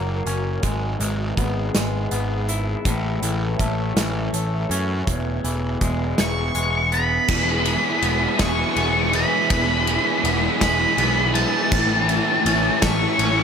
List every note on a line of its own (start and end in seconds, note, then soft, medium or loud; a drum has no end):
0.00 0.20 F#1 medium
0.00 0.27 F#2 medium
0.00 0.61 F#3 medium
0.00 0.63 F#3 medium
0.00 0.63 A#3 soft
0.00 0.61 F#4 medium
0.00 0.61 A#4 medium
0.00 0.61 C#5 medium
0.26 0.57 F#1 medium
0.26 0.64 C#4 medium
0.26 closed hi-hat soft
0.61 0.95 G#1 medium
0.61 2.83 G#3 medium
0.61 0.99 G#3 medium
0.61 2.82 G#4 medium
0.61 2.83 B4 medium
0.61 7.24 E5 medium
0.61 kick medium
0.61 closed hi-hat medium
1.00 1.31 G#1 medium
1.00 1.74 G#3 medium
1.00 closed hi-hat soft
1.37 1.69 G#1 medium
1.37 2.10 B3 medium
1.37 kick medium
1.37 closed hi-hat soft
1.75 2.06 G#1 medium
1.75 2.86 G#3 medium
1.75 snare medium
1.75 closed hi-hat medium
2.11 2.74 G#1 medium
2.11 2.86 B3 soft
2.11 closed hi-hat soft
2.49 4.70 E4 medium
2.49 closed hi-hat medium
2.85 3.17 A1 medium
2.85 4.71 A2 medium
2.85 5.05 A3 medium
2.85 5.05 A4 medium
2.85 5.05 C#5 medium
2.85 kick medium
2.85 closed hi-hat medium
3.22 3.54 A1 medium
3.22 3.96 E3 medium
3.22 closed hi-hat medium
3.59 3.91 A1 medium
3.59 4.33 A3 medium
3.59 kick medium
3.59 closed hi-hat medium
3.96 4.28 A1 medium
3.96 5.44 E3 medium
3.96 snare medium
3.96 closed hi-hat medium
4.33 4.64 A1 medium
4.33 5.08 A3 medium
4.33 closed hi-hat medium
4.70 5.01 F#2 medium
4.70 5.08 C#4 medium
4.70 closed hi-hat medium
5.06 5.39 E1 medium
5.06 6.92 E2 medium
5.06 7.26 E3 medium
5.06 7.27 B3 medium
5.06 7.27 G#4 medium
5.06 kick medium
5.06 closed hi-hat medium
5.44 5.76 E1 medium
5.44 6.17 E3 medium
5.44 closed hi-hat medium
5.81 6.13 E1 medium
5.81 6.54 G#3 medium
5.81 kick medium
5.81 closed hi-hat soft
6.18 6.50 E1 medium
6.18 7.29 E3 medium
6.18 6.93 C#6 medium
6.18 snare medium
6.18 closed hi-hat medium
6.55 7.18 E1 medium
6.55 7.29 G#3 medium
6.55 closed hi-hat medium
6.92 7.29 B3 medium
6.92 8.37 B5 medium
6.92 closed hi-hat soft
7.28 7.75 E1 medium
7.28 9.14 E2 medium
7.28 7.36 E3 medium
7.28 11.68 E3 medium
7.28 11.68 G#3 medium
7.28 7.37 G#3 medium
7.28 11.68 B3 medium
7.28 11.68 E5 medium
7.28 kick medium
7.28 crash loud
7.37 7.44 E3 soft
7.37 7.43 G#3 soft
7.44 7.51 E3 medium
7.44 7.51 G#3 medium
7.51 7.59 E3 soft
7.51 7.59 G#3 soft
7.59 7.67 E3 medium
7.59 7.67 G#3 medium
7.65 7.75 E3 soft
7.65 7.75 G#3 medium
7.65 ride medium
7.75 7.81 E3 medium
7.75 7.83 G#3 medium
7.82 7.89 E3 medium
7.82 7.90 G#3 soft
7.90 7.97 E3 medium
7.90 7.97 G#3 medium
7.98 8.04 E3 soft
7.98 8.05 G#3 medium
8.02 8.26 E1 medium
8.02 8.11 E3 medium
8.02 8.13 G#3 medium
8.02 8.76 B3 medium
8.02 ride medium
8.12 8.19 E3 medium
8.12 8.20 G#3 medium
8.19 8.27 E3 medium
8.19 8.28 G#3 medium
8.28 8.34 E3 medium
8.28 8.34 G#3 medium
8.35 8.42 E3 medium
8.35 8.42 G#3 medium
8.39 8.63 E1 medium
8.39 10.24 G#3 medium
8.39 9.15 C#6 medium
8.39 kick medium
8.39 snare loud
8.39 ride medium
8.43 8.50 E3 medium
8.43 8.50 G#3 medium
8.50 8.58 E3 medium
8.50 8.58 G#3 medium
8.58 8.66 E3 medium
8.58 8.66 G#3 medium
8.66 8.73 E3 medium
8.66 8.74 G#3 medium
8.74 9.23 E1 medium
8.74 8.81 E3 soft
8.74 8.81 G#3 medium
8.74 10.23 B3 medium
8.74 ride medium
8.81 8.89 E3 medium
8.81 8.89 G#3 medium
8.89 8.97 E3 soft
8.89 8.96 G#3 soft
8.97 9.04 E3 medium
8.97 9.03 G#3 medium
9.04 9.10 E3 soft
9.04 9.11 G#3 soft
9.11 9.18 E3 medium
9.11 10.98 E3 medium
9.11 9.19 G#3 medium
9.11 ride medium
9.15 9.26 E3 soft
9.15 10.61 B5 medium
9.20 9.27 G#3 soft
9.26 9.34 E3 medium
9.26 9.34 G#3 medium
9.34 9.42 E3 soft
9.34 9.42 G#3 soft
9.42 9.50 E3 medium
9.42 9.50 G#3 medium
9.50 9.97 E1 medium
9.50 11.35 E2 medium
9.50 9.58 E3 medium
9.50 9.59 G#3 medium
9.50 kick medium
9.50 ride medium
9.58 9.65 E3 soft
9.58 9.67 G#3 medium
9.65 9.73 E3 medium
9.65 9.73 G#3 medium
9.73 9.81 E3 medium
9.73 9.81 G#3 medium
9.81 9.88 E3 medium
9.81 9.89 G#3 medium
9.87 9.96 E3 medium
9.87 9.97 G#3 medium
9.87 ride medium
9.96 10.03 E3 medium
9.96 10.04 G#3 medium
10.03 10.11 E3 soft
10.03 10.12 G#3 medium
10.12 10.18 E3 medium
10.12 10.19 G#3 medium
10.19 10.26 E3 medium
10.19 10.27 G#3 medium
10.24 10.47 E1 medium
10.24 10.34 E3 medium
10.24 10.97 B3 medium
10.24 ride medium
10.28 10.34 G#3 medium
10.34 10.42 E3 medium
10.34 10.42 G#3 medium
10.42 10.49 E3 medium
10.42 10.49 G#3 medium
10.49 10.57 E3 medium
10.49 10.57 G#3 medium
10.57 10.64 E3 medium
10.57 10.65 G#3 medium
10.61 10.85 E1 medium
10.61 10.71 E3 medium
10.61 11.72 G#3 medium
10.61 11.34 B5 medium
10.61 kick medium
10.61 snare loud
10.61 ride medium
10.66 10.73 G#3 medium
10.72 10.79 E3 medium
10.72 10.80 G#3 medium
10.80 10.87 E3 medium
10.80 10.88 G#3 medium
10.87 10.94 E3 medium
10.87 10.96 G#3 medium
10.95 11.44 B1 medium
10.95 11.01 E3 medium
10.95 11.03 G#3 medium
10.95 11.72 B3 medium
10.95 ride medium
11.02 11.09 E3 medium
11.02 11.11 G#3 medium
11.11 11.17 E3 medium
11.11 11.18 G#3 medium
11.18 11.25 E3 medium
11.18 11.26 G#3 medium
11.25 11.32 E3 soft
11.25 11.33 G#3 medium
11.33 11.40 E3 medium
11.33 11.72 E3 medium
11.33 11.41 G#3 medium
11.33 12.82 A5 medium
11.33 ride medium
11.40 11.48 E3 medium
11.40 11.49 G#3 medium
11.48 11.55 E3 medium
11.48 11.57 G#3 medium
11.55 11.62 E3 soft
11.55 11.65 G#3 medium
11.62 11.70 E3 medium
11.62 11.73 G#3 medium
11.71 12.18 A1 medium
11.71 11.78 A2 medium
11.71 13.43 A2 medium
11.71 11.79 E3 medium
11.71 13.43 A3 medium
11.71 13.43 A4 medium
11.71 13.43 C#5 medium
11.71 13.43 E5 medium
11.71 kick loud
11.71 crash medium
11.78 11.85 A2 soft
11.78 11.87 E3 medium
11.86 11.93 A2 medium
11.86 11.95 E3 medium
11.94 12.01 A2 soft
11.94 12.03 E3 medium
12.01 12.09 A2 medium
12.01 12.10 E3 medium
12.09 12.16 A2 soft
12.09 12.18 E3 medium
12.09 ride medium
12.17 12.24 A2 medium
12.17 12.26 E3 medium
12.25 12.32 A2 medium
12.25 12.33 E3 medium
12.32 12.40 A2 medium
12.32 12.41 E3 medium
12.40 12.47 A2 medium
12.40 12.48 E3 medium
12.46 12.69 A1 medium
12.46 12.54 A2 medium
12.46 12.56 E3 medium
12.46 13.18 C#4 medium
12.46 ride medium
12.55 12.62 A2 medium
12.55 12.64 E3 medium
12.62 12.70 A2 medium
12.62 12.71 E3 medium
12.70 12.78 A2 medium
12.70 12.79 E3 medium
12.79 13.06 A1 medium
12.79 12.86 A2 medium
12.79 12.87 E3 medium
12.79 13.43 A3 medium
12.79 13.43 C#6 medium
12.79 kick medium
12.79 snare loud
12.79 ride medium
12.86 12.93 A2 medium
12.86 12.94 E3 medium
12.93 13.01 A2 medium
12.93 13.01 E3 medium
13.01 13.08 A2 medium
13.01 13.09 E3 medium
13.09 13.16 A2 medium
13.09 13.16 E3 medium
13.16 13.43 A1 medium
13.16 13.24 A2 medium
13.16 13.24 E3 medium
13.16 13.43 C#4 medium
13.16 ride medium
13.24 13.31 A2 medium
13.24 13.31 E3 medium
13.31 13.39 A2 medium
13.31 13.39 E3 medium
13.40 13.43 A2 medium
13.40 13.43 E3 medium